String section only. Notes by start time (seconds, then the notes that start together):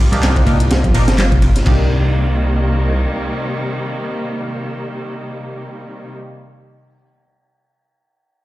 Already playing: C3 G3 A#3 F4
1.67 C3 D#3 G3 A#3